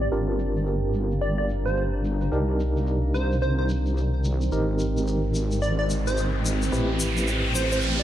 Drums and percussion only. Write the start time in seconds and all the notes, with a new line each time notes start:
0.12 shaker
0.39 shaker
0.56 shaker
0.67 shaker
0.94 shaker
1.11 shaker
1.22 shaker
1.50 shaker
1.67 shaker
1.76 shaker
2.05 shaker
2.21 shaker
2.32 shaker
2.60 shaker
2.77 shaker
2.87 shaker
3.15 shaker
3.32 shaker
3.42 shaker
3.69 shaker
3.86 shaker
3.97 shaker
4.24 shaker
4.41 shaker
4.52 shaker
4.79 shaker
4.97 shaker
5.07 shaker
5.35 shaker
5.51 shaker
5.62 shaker
5.90 shaker
6.07 shaker
6.17 shaker
6.46 shaker
6.62 shaker
6.73 shaker
7.00 shaker
7.17 shaker
7.27 shaker
7.55 shaker
7.72 shaker
7.81 shaker